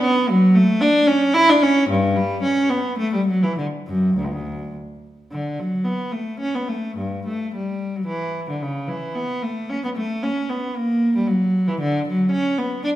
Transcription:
0.01 B3
0.29 F#3
0.55 A3
0.81 D4
1.07 C#4
1.34 E4
1.49 D4
1.63 C#4
1.90 G2
2.16 G3
2.43 C#4
2.69 B3
2.98 A3
3.14 G3
3.27 F#3
3.43 E3
3.58 D3
3.87 F#2
4.16 D2
4.24 C#2
4.31 D2
5.32 D3
5.59 F#3
5.84 B3
6.12 A3
6.40 C#4
6.55 B3
6.68 A3
6.97 G2
7.27 A3
7.55 G3
7.96 F#3
8.06 E3
8.50 D3
8.62 C#3
8.88 E3
9.16 B3
9.42 A3
9.70 C#4
9.84 B3
9.97 A3
10.23 C#4
10.49 B3
10.76 A#3
11.15 G3
11.27 F#3
11.67 E3
11.81 D3
12.08 F#3
12.32 C#4
12.58 B3
12.84 D4

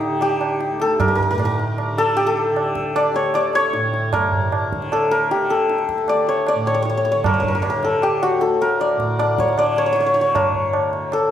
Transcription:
Already playing: D2 A2 D3 D#4 G4 A4
0.01 tabla te
0.09 D3
0.21 G4, tabla na
0.41 tabla na
0.60 tabla te
0.71 D2
0.80 A4, tabla te
1.00 A#4, tabla na, tabla ge
1.08 A#4
1.15 A#4, tabla ge
1.23 A#4
1.31 A2 A#4
1.38 A#4, tabla na
1.45 A#4
1.59 tabla te
1.78 tabla na
1.92 D3
1.98 A4, tabla na
2.17 G4, tabla te
2.27 A4
2.37 tabla te
2.52 D3
2.56 tabla na
2.75 tabla ke
2.96 D5, tabla na
3.13 D2 C#5, tabla te
3.34 D5, tabla na
3.53 C#5, tabla na
3.73 A2, tabla te
3.93 tabla te
4.13 A2 A#4, tabla na, tabla ge
4.32 tabla ge
4.52 tabla na
4.72 D3, tabla ke
4.82 tabla te
4.92 A4, tabla na
5.11 A#4, tabla na
5.31 D3 G4, tabla te
5.50 A4, tabla te
5.69 tabla te
5.78 tabla te
5.89 tabla ke
5.95 D2, tabla te
6.08 D5, tabla na
6.27 C#5, tabla te
6.47 D5, tabla na
6.55 A2
6.66 C#5, tabla na
6.74 C#5
6.82 C#5, tabla te
6.90 C#5
6.97 C#5
7.05 C#5, tabla te
7.12 D3 C#5
7.24 A#4, tabla na, tabla ge
7.34 A#4
7.40 A#4, tabla ge
7.48 A#4
7.55 A#4
7.62 A#4, tabla na
7.70 A#4
7.76 D3
7.83 A4, tabla te
8.02 G4, tabla na
8.22 F#4, tabla na
8.36 D2
8.41 A4, tabla te
8.61 A#4, tabla te
8.80 D5, tabla na
8.97 A2, tabla ke
9.19 D5, tabla na
9.38 C#5, tabla ke
9.48 tabla te
9.56 D3 D5, tabla na
9.76 C#5, tabla na
9.86 C#5
9.93 C#5, tabla te
10.00 C#5
10.06 C#5
10.14 D3 C#5, tabla te
10.21 C#5
10.35 A#4, tabla na, tabla ge
10.54 tabla ge
10.73 D2, tabla na
10.93 tabla te
11.12 A4, tabla na

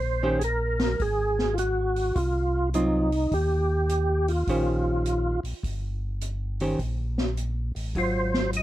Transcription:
Already playing: A#1 C5
0.23 D#3 C#4 G4 C5
0.39 G#4, closed hi-hat
0.44 A#4
0.80 snare, open hi-hat
1.00 G#1 G#4, kick, open hi-hat
1.39 snare
1.54 F4, closed hi-hat
1.59 F#4
1.96 open hi-hat
2.15 C2 F4, kick, open hi-hat
2.74 F#3 C4 D#4 F4, closed hi-hat
3.12 open hi-hat
3.32 D#2 G4, kick, open hi-hat
3.89 closed hi-hat
4.28 F4, open hi-hat
4.47 A#1 D#3 C#4 G4 C5, kick, open hi-hat
5.06 closed hi-hat
5.43 A#1, open hi-hat
5.63 G1, kick, open hi-hat
6.21 closed hi-hat
6.60 D#3 C#4 G4 C5, open hi-hat
6.79 A#1, kick, open hi-hat
7.18 snare
7.37 closed hi-hat
7.75 A1, open hi-hat
7.95 G#1 F#3 F4 C5, kick, open hi-hat
8.34 snare
8.53 D#5, closed hi-hat

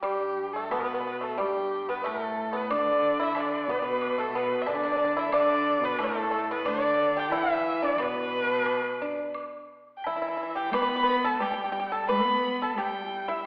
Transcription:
0.02 G2 G3 G4, high woodblock
0.53 A3 A4
0.71 B2 B3 B4, high woodblock, low woodblock
0.80 B3
0.94 B3
1.01 B3
1.07 B3
1.21 A3 A4
1.38 G2 G3 G4, high woodblock
1.89 B3 B4
2.04 A2 A3 A4, low woodblock
2.53 B3 B4
2.70 D3 D4 D5, high woodblock
3.20 E4 E5
3.35 D3 D4, high woodblock, low woodblock
3.40 D5
3.68 B2 B3 B4
3.79 B2 B3 D5
3.84 B4
4.01 high woodblock
4.18 A3 A4
4.33 B2 B3
4.37 B4
4.62 E5
4.66 D3 D4 D5, low woodblock
4.75 D4
4.83 D4
4.92 D4
4.96 D4
5.05 D4
5.17 E4 E5
5.32 D3 D4 D5, high woodblock
5.81 B2 B3 B4
5.99 A2 A3, high woodblock, low woodblock
6.03 A4
6.09 A3
6.15 A3
6.23 A3
6.31 A3
6.38 A3
6.51 B3 B4
6.65 D3 D4 D5, high woodblock
7.17 G4 G5
7.31 E3 E4, low woodblock
7.37 E5
7.82 D4 D5
7.98 B2 B3, high woodblock
8.02 B4
8.66 high woodblock, low woodblock
9.02 D4
9.34 high woodblock
9.97 G5
10.04 E3 E4 E5, low woodblock
10.16 E4
10.22 E4
10.28 E4
10.37 E4
10.43 E4
10.56 G4 G5
10.72 B3 B4 B5, high woodblock
10.82 B4
10.89 B4
10.96 B4
11.03 B4
11.10 B4
11.24 A4 A5
11.40 G3 G4 G5, high woodblock, low woodblock
11.51 G4
11.64 G4
11.72 G4
11.80 G4
11.92 A4 A5
12.09 B3 B4 B5, high woodblock
12.62 A4 A5
12.76 G3 G4 G5, low woodblock
13.09 E4
13.28 E4 E5

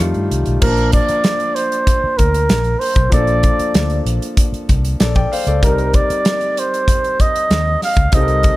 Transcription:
0.00 F2 D#3 G3 A3 F4
0.14 G2, closed hi-hat
0.31 C2, closed hi-hat
0.46 B1, closed hi-hat
0.61 A#1 F3 A#3 D4 A#4 A5, kick, crash
0.77 closed hi-hat
0.92 D5, kick, closed hi-hat
1.09 muted fingered electric bass stroke, closed hi-hat
1.24 snare, closed hi-hat
1.40 closed hi-hat
1.55 C5, closed hi-hat
1.72 closed hi-hat
1.87 kick, closed hi-hat
2.04 muted fingered electric bass stroke
2.18 D2 A#4, kick, closed hi-hat
2.34 closed hi-hat
2.49 A#1, snare, closed hi-hat
2.64 closed hi-hat
2.80 C5, open hi-hat
2.96 B1, kick, closed hi-hat
3.10 A#1 F3 A#3 D4 D5, kick, closed hi-hat
3.14 A4
3.27 closed hi-hat
3.43 kick, closed hi-hat
3.59 muted fingered electric bass stroke, closed hi-hat
3.74 D2, snare, closed hi-hat
3.90 closed hi-hat
4.05 A#1, closed hi-hat
4.22 closed hi-hat
4.37 kick, closed hi-hat
4.52 muted fingered electric bass stroke, closed hi-hat
4.69 C2, kick, closed hi-hat
4.85 closed hi-hat
5.00 A#1 A4 D5, snare, closed hi-hat
5.15 D5 G5, kick, closed hi-hat
5.32 C5 F5, open hi-hat
5.47 C#2 A4 D5, closed hi-hat
5.62 C2 G3 C4 D#4 A#4, kick, closed hi-hat
5.66 A#4
5.78 closed hi-hat
5.94 D5, kick, closed hi-hat
6.10 muted fingered electric bass stroke, closed hi-hat
6.25 snare, closed hi-hat
6.41 closed hi-hat
6.57 C5, closed hi-hat
6.74 closed hi-hat
6.88 kick, closed hi-hat
7.04 closed hi-hat
7.20 D#5, kick, closed hi-hat
7.36 closed hi-hat
7.51 D#2, snare, closed hi-hat
7.82 F5, snare, open hi-hat
7.97 C#2, kick, closed hi-hat
8.12 C2 G3 C4 D#4 D#5, kick, closed hi-hat
8.16 A4
8.23 A#4
8.28 closed hi-hat
8.43 kick, closed hi-hat

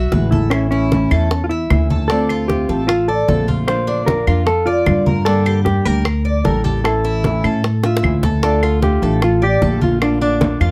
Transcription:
Already playing: F#4 E5
0.12 A1 E3 G#3 B3 E4 B4, high bongo, low bongo, high conga
0.31 E4 A4, high conga
0.50 E3 A3 C#4 E4, high bongo, high conga, claves
0.71 C#4 E4, high bongo, high conga
0.91 E3 A3 C#4 E4, high bongo, high conga
1.11 E2 A3 C#4 E4 A4, high bongo, high conga, claves
1.31 muted nylon-string guitar stroke, high bongo, high conga
1.44 F4
1.49 E4 E5, high conga
1.70 D2 E3 A3 C#4 E4, high bongo, low bongo, high conga, claves
1.90 A4, high conga
2.08 D3 A3 C4 D4 F4 A4, high bongo
2.29 F4, high bongo, high conga, claves
2.48 D3 A3 C4 F4 G4, high bongo, high conga
2.69 A1 A3 C4 F4 A4, high bongo, high conga
2.88 F4, muted nylon-string guitar stroke, high bongo, high conga, claves
3.08 A4 D5, high conga
3.28 A#1 D3 A3 C4 F4 A4, high bongo, low bongo, high conga
3.48 F4, high conga
3.68 D3 A#3 D4 F4 C5, high bongo, high conga, claves
3.87 D4, high bongo, high conga
4.06 D3 A#3 D4 F4 A#4, high bongo, high conga
4.27 F2 A#3 D4 F4, high bongo, high conga, claves
4.47 A4, muted nylon-string guitar stroke, high bongo, high conga
4.66 F4 D5, high conga
4.86 G2 D3 A#3 D4 F4, high bongo, low bongo, high conga, claves
5.06 A#4, high conga
5.25 D3 G3 A#3 D4 G4 A4, high bongo, high conga
5.46 G4, high bongo, high conga, claves
5.65 G3 A#3 D4 G4, high bongo, high conga
5.85 D2 G3 A#3 D4 G4 A#4, high bongo, high conga
6.05 muted nylon-string guitar stroke, high bongo, high conga, claves
6.25 D5, high conga
6.45 A1 G3 A#3 D4 G4 A4 A#4, high bongo, low bongo, high conga
6.64 G4 A4, high conga
6.84 E3 A3 C#4 E4 A4, high bongo, claves
7.04 E4, high bongo, high conga
7.24 E3 A3 C#4 E4, high bongo, high conga
7.44 A2 A3 C#4 E4 A4, high bongo, high conga, claves
7.64 muted nylon-string guitar stroke, high bongo, high conga
7.83 F4 E5, high bongo, high conga
7.97 high bongo
8.03 D2 E3 A3 C#4 E4, high conga, claves
8.23 A4, low bongo, high conga
8.43 D3 A3 D4 F4 A4, high bongo, high conga
8.63 F4, high bongo, high conga, claves
8.82 D3 A3 D4 F4 G4, high bongo, high conga
9.02 A1 A3 D4 F4 A4, high bongo, high conga
9.22 F4, muted nylon-string guitar stroke, high bongo, high conga, claves
9.42 G4 D5, high conga
9.62 A#1 D3 A3 D4 F4 A4, high bongo, low bongo, high conga
9.81 F4, high conga
10.01 D3 A#3 D4 F4, high bongo, high conga, claves
10.21 D4, high bongo, high conga
10.41 D3 A#3 D4 F4, high bongo, high conga
10.60 F2 A#3 D4 F4, high bongo, high conga, claves

